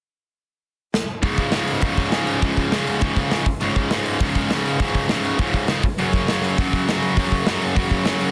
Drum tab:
HH |--------|oooooooo|oooooooo|oooooooo|
SD |------o-|--o---o-|--o---o-|--o---o-|
BD |--------|oo--oo--|oo--oo-o|-o--oo--|

HH |oooooooo|oooooooo|oooooooo|
SD |--o---o-|--o---o-|--o---o-|
BD |oo--oo-o|-o--oo--|oo--oo--|